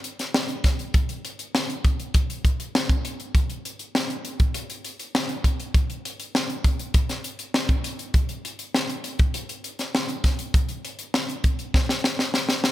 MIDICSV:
0, 0, Header, 1, 2, 480
1, 0, Start_track
1, 0, Tempo, 599880
1, 755, Time_signature, 4, 2, 24, 8
1, 10177, End_track
2, 0, Start_track
2, 0, Title_t, "Drums"
2, 33, Note_on_c, 9, 42, 69
2, 113, Note_off_c, 9, 42, 0
2, 155, Note_on_c, 9, 42, 55
2, 157, Note_on_c, 9, 38, 30
2, 235, Note_off_c, 9, 42, 0
2, 237, Note_off_c, 9, 38, 0
2, 276, Note_on_c, 9, 38, 104
2, 356, Note_off_c, 9, 38, 0
2, 390, Note_on_c, 9, 42, 44
2, 470, Note_off_c, 9, 42, 0
2, 512, Note_on_c, 9, 42, 84
2, 514, Note_on_c, 9, 36, 81
2, 516, Note_on_c, 9, 38, 33
2, 592, Note_off_c, 9, 42, 0
2, 594, Note_off_c, 9, 36, 0
2, 596, Note_off_c, 9, 38, 0
2, 633, Note_on_c, 9, 42, 45
2, 713, Note_off_c, 9, 42, 0
2, 753, Note_on_c, 9, 42, 76
2, 755, Note_on_c, 9, 36, 93
2, 833, Note_off_c, 9, 42, 0
2, 835, Note_off_c, 9, 36, 0
2, 873, Note_on_c, 9, 42, 48
2, 953, Note_off_c, 9, 42, 0
2, 997, Note_on_c, 9, 42, 74
2, 1077, Note_off_c, 9, 42, 0
2, 1113, Note_on_c, 9, 42, 57
2, 1193, Note_off_c, 9, 42, 0
2, 1237, Note_on_c, 9, 38, 93
2, 1317, Note_off_c, 9, 38, 0
2, 1357, Note_on_c, 9, 42, 48
2, 1437, Note_off_c, 9, 42, 0
2, 1476, Note_on_c, 9, 42, 71
2, 1477, Note_on_c, 9, 36, 81
2, 1556, Note_off_c, 9, 42, 0
2, 1557, Note_off_c, 9, 36, 0
2, 1597, Note_on_c, 9, 42, 44
2, 1677, Note_off_c, 9, 42, 0
2, 1714, Note_on_c, 9, 42, 88
2, 1717, Note_on_c, 9, 36, 90
2, 1794, Note_off_c, 9, 42, 0
2, 1797, Note_off_c, 9, 36, 0
2, 1840, Note_on_c, 9, 42, 58
2, 1920, Note_off_c, 9, 42, 0
2, 1957, Note_on_c, 9, 36, 73
2, 1958, Note_on_c, 9, 42, 68
2, 2037, Note_off_c, 9, 36, 0
2, 2038, Note_off_c, 9, 42, 0
2, 2079, Note_on_c, 9, 42, 53
2, 2159, Note_off_c, 9, 42, 0
2, 2201, Note_on_c, 9, 38, 99
2, 2281, Note_off_c, 9, 38, 0
2, 2316, Note_on_c, 9, 36, 87
2, 2316, Note_on_c, 9, 42, 43
2, 2396, Note_off_c, 9, 36, 0
2, 2396, Note_off_c, 9, 42, 0
2, 2439, Note_on_c, 9, 42, 79
2, 2519, Note_off_c, 9, 42, 0
2, 2558, Note_on_c, 9, 42, 45
2, 2638, Note_off_c, 9, 42, 0
2, 2677, Note_on_c, 9, 36, 85
2, 2679, Note_on_c, 9, 42, 73
2, 2758, Note_off_c, 9, 36, 0
2, 2760, Note_off_c, 9, 42, 0
2, 2797, Note_on_c, 9, 42, 46
2, 2877, Note_off_c, 9, 42, 0
2, 2923, Note_on_c, 9, 42, 65
2, 3003, Note_off_c, 9, 42, 0
2, 3036, Note_on_c, 9, 42, 50
2, 3116, Note_off_c, 9, 42, 0
2, 3161, Note_on_c, 9, 38, 95
2, 3241, Note_off_c, 9, 38, 0
2, 3282, Note_on_c, 9, 42, 44
2, 3362, Note_off_c, 9, 42, 0
2, 3398, Note_on_c, 9, 42, 69
2, 3478, Note_off_c, 9, 42, 0
2, 3518, Note_on_c, 9, 42, 45
2, 3520, Note_on_c, 9, 36, 83
2, 3598, Note_off_c, 9, 42, 0
2, 3600, Note_off_c, 9, 36, 0
2, 3636, Note_on_c, 9, 42, 85
2, 3716, Note_off_c, 9, 42, 0
2, 3758, Note_on_c, 9, 42, 55
2, 3838, Note_off_c, 9, 42, 0
2, 3877, Note_on_c, 9, 42, 66
2, 3957, Note_off_c, 9, 42, 0
2, 3997, Note_on_c, 9, 42, 51
2, 4077, Note_off_c, 9, 42, 0
2, 4120, Note_on_c, 9, 38, 109
2, 4200, Note_off_c, 9, 38, 0
2, 4233, Note_on_c, 9, 42, 44
2, 4313, Note_off_c, 9, 42, 0
2, 4356, Note_on_c, 9, 36, 71
2, 4356, Note_on_c, 9, 42, 77
2, 4436, Note_off_c, 9, 36, 0
2, 4436, Note_off_c, 9, 42, 0
2, 4478, Note_on_c, 9, 42, 49
2, 4558, Note_off_c, 9, 42, 0
2, 4597, Note_on_c, 9, 36, 90
2, 4598, Note_on_c, 9, 42, 72
2, 4677, Note_off_c, 9, 36, 0
2, 4678, Note_off_c, 9, 42, 0
2, 4718, Note_on_c, 9, 42, 44
2, 4798, Note_off_c, 9, 42, 0
2, 4844, Note_on_c, 9, 42, 72
2, 4924, Note_off_c, 9, 42, 0
2, 4958, Note_on_c, 9, 42, 52
2, 5038, Note_off_c, 9, 42, 0
2, 5080, Note_on_c, 9, 38, 94
2, 5160, Note_off_c, 9, 38, 0
2, 5199, Note_on_c, 9, 42, 41
2, 5279, Note_off_c, 9, 42, 0
2, 5316, Note_on_c, 9, 42, 73
2, 5317, Note_on_c, 9, 36, 76
2, 5396, Note_off_c, 9, 42, 0
2, 5397, Note_off_c, 9, 36, 0
2, 5437, Note_on_c, 9, 42, 48
2, 5517, Note_off_c, 9, 42, 0
2, 5554, Note_on_c, 9, 42, 82
2, 5557, Note_on_c, 9, 36, 93
2, 5634, Note_off_c, 9, 42, 0
2, 5637, Note_off_c, 9, 36, 0
2, 5676, Note_on_c, 9, 42, 54
2, 5677, Note_on_c, 9, 38, 37
2, 5756, Note_off_c, 9, 42, 0
2, 5757, Note_off_c, 9, 38, 0
2, 5795, Note_on_c, 9, 42, 67
2, 5875, Note_off_c, 9, 42, 0
2, 5913, Note_on_c, 9, 42, 55
2, 5993, Note_off_c, 9, 42, 0
2, 6035, Note_on_c, 9, 38, 100
2, 6115, Note_off_c, 9, 38, 0
2, 6151, Note_on_c, 9, 42, 44
2, 6154, Note_on_c, 9, 36, 80
2, 6231, Note_off_c, 9, 42, 0
2, 6234, Note_off_c, 9, 36, 0
2, 6276, Note_on_c, 9, 42, 86
2, 6356, Note_off_c, 9, 42, 0
2, 6394, Note_on_c, 9, 42, 48
2, 6474, Note_off_c, 9, 42, 0
2, 6513, Note_on_c, 9, 42, 75
2, 6515, Note_on_c, 9, 36, 87
2, 6593, Note_off_c, 9, 42, 0
2, 6595, Note_off_c, 9, 36, 0
2, 6633, Note_on_c, 9, 42, 45
2, 6713, Note_off_c, 9, 42, 0
2, 6760, Note_on_c, 9, 42, 76
2, 6840, Note_off_c, 9, 42, 0
2, 6873, Note_on_c, 9, 42, 53
2, 6953, Note_off_c, 9, 42, 0
2, 6997, Note_on_c, 9, 38, 85
2, 7077, Note_off_c, 9, 38, 0
2, 7117, Note_on_c, 9, 42, 46
2, 7197, Note_off_c, 9, 42, 0
2, 7234, Note_on_c, 9, 42, 73
2, 7314, Note_off_c, 9, 42, 0
2, 7353, Note_on_c, 9, 42, 43
2, 7357, Note_on_c, 9, 36, 86
2, 7433, Note_off_c, 9, 42, 0
2, 7437, Note_off_c, 9, 36, 0
2, 7475, Note_on_c, 9, 42, 82
2, 7555, Note_off_c, 9, 42, 0
2, 7596, Note_on_c, 9, 42, 56
2, 7676, Note_off_c, 9, 42, 0
2, 7715, Note_on_c, 9, 42, 69
2, 7795, Note_off_c, 9, 42, 0
2, 7833, Note_on_c, 9, 42, 55
2, 7836, Note_on_c, 9, 38, 33
2, 7914, Note_off_c, 9, 42, 0
2, 7916, Note_off_c, 9, 38, 0
2, 7959, Note_on_c, 9, 38, 106
2, 8039, Note_off_c, 9, 38, 0
2, 8072, Note_on_c, 9, 42, 49
2, 8152, Note_off_c, 9, 42, 0
2, 8193, Note_on_c, 9, 42, 87
2, 8195, Note_on_c, 9, 36, 74
2, 8197, Note_on_c, 9, 38, 32
2, 8273, Note_off_c, 9, 42, 0
2, 8275, Note_off_c, 9, 36, 0
2, 8277, Note_off_c, 9, 38, 0
2, 8312, Note_on_c, 9, 42, 47
2, 8392, Note_off_c, 9, 42, 0
2, 8434, Note_on_c, 9, 42, 70
2, 8435, Note_on_c, 9, 36, 97
2, 8515, Note_off_c, 9, 36, 0
2, 8515, Note_off_c, 9, 42, 0
2, 8551, Note_on_c, 9, 42, 47
2, 8631, Note_off_c, 9, 42, 0
2, 8679, Note_on_c, 9, 42, 74
2, 8759, Note_off_c, 9, 42, 0
2, 8792, Note_on_c, 9, 42, 54
2, 8872, Note_off_c, 9, 42, 0
2, 8914, Note_on_c, 9, 38, 93
2, 8994, Note_off_c, 9, 38, 0
2, 9037, Note_on_c, 9, 42, 47
2, 9117, Note_off_c, 9, 42, 0
2, 9153, Note_on_c, 9, 42, 68
2, 9155, Note_on_c, 9, 36, 75
2, 9233, Note_off_c, 9, 42, 0
2, 9235, Note_off_c, 9, 36, 0
2, 9273, Note_on_c, 9, 42, 42
2, 9353, Note_off_c, 9, 42, 0
2, 9396, Note_on_c, 9, 36, 87
2, 9398, Note_on_c, 9, 38, 49
2, 9476, Note_off_c, 9, 36, 0
2, 9478, Note_off_c, 9, 38, 0
2, 9516, Note_on_c, 9, 38, 55
2, 9596, Note_off_c, 9, 38, 0
2, 9635, Note_on_c, 9, 38, 68
2, 9715, Note_off_c, 9, 38, 0
2, 9755, Note_on_c, 9, 38, 60
2, 9835, Note_off_c, 9, 38, 0
2, 9872, Note_on_c, 9, 38, 70
2, 9952, Note_off_c, 9, 38, 0
2, 9991, Note_on_c, 9, 38, 62
2, 10071, Note_off_c, 9, 38, 0
2, 10112, Note_on_c, 9, 38, 85
2, 10177, Note_off_c, 9, 38, 0
2, 10177, End_track
0, 0, End_of_file